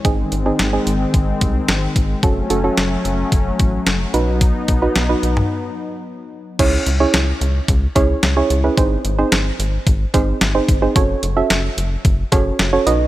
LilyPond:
<<
  \new Staff \with { instrumentName = "Synth pluck" } { \time 4/4 \key cis \minor \tempo 4 = 110 <bis dis' gis'>8 r16 <bis dis' gis'>8 <bis dis' gis'>4. r4 r16 | <cis' fis' a'>8 <cis' fis' a'>16 <cis' fis' a'>4. r4 r16 <dis' fis' b'>8~ | <dis' fis' b'>8 r16 <dis' fis' b'>8 <dis' fis' b'>4. r4 r16 | <cis' e' gis' cis''>8 r16 <cis' e' gis' cis''>4. r16 <cis' e' gis' cis''>8 r16 <cis' e' gis' cis''>8 <cis' e' gis' b'>16 |
<bis dis' gis' bis'>8 r16 <bis dis' gis' bis'>4. r16 <bis dis' gis' bis'>8 r16 <bis dis' gis' bis'>8 <bis dis' gis' bis'>16 | <cis' fis' a' cis''>8 r16 <cis' fis' a' e''>4. r16 <cis' fis' a' cis''>8 r16 <cis' fis' a' cis''>16 <dis' fis' b' dis''>8 | }
  \new Staff \with { instrumentName = "Analog synth pad" } { \time 4/4 \key cis \minor << { <gis bis>1 | <a cis'>2.~ <a cis'>8 <b dis'>8~ | <b dis'>1 | r1 |
r1 | r1 | } \\ { dis1 | fis1~ | fis1 | r1 |
r1 | r1 | } >> }
  \new Staff \with { instrumentName = "Analog synth bass" } { \clef bass \time 4/4 \key cis \minor gis,,8 gis,,8 gis,,8 gis,,8 gis,,8 bis,,8 gis,,8 gis,,8 | fis,,8 fis,,8 fis,,8 fis,,8 fis,,8 a,,8 fis,,8 b,,8~ | b,,8 b,,8 b,,8 b,,8 r2 | cis,8 cis,8 cis,8 cis,8 cis,8 cis,8 cis,8 cis,8 |
gis,,8 gis,,8 gis,,8 gis,,8 gis,,8 gis,,8 gis,,8 gis,,8 | fis,,8 fis,,8 fis,,8 fis,,8 fis,,8 fis,,8 fis,,8 b,,8 | }
  \new DrumStaff \with { instrumentName = "Drums" } \drummode { \time 4/4 <hh bd>8 hh8 <hh sn>8 hh8 <hh bd>8 <hh bd>8 <hh sn>8 <hh bd>8 | <hh bd>8 hh8 <hh sn>8 hh8 <hh bd>8 <hh bd>8 <hh sn>8 hh8 | <hh bd>8 <hh bd>8 <hh sn>8 hh16 toml16 r4 r4 | <cymc hh bd>8 hh8 <hh sn>8 hh8 <hh bd>8 <cb hh bd>8 <hh sn>8 hh8 |
<hh bd>8 hh8 <hh sn>8 hh8 <hh bd>8 <cb hh bd>8 <hh sn>8 <hh bd>8 | <hh bd>8 hh8 <hh sn>8 hh8 <hh bd>8 <cb hh bd>8 <hh sn>8 hh8 | }
>>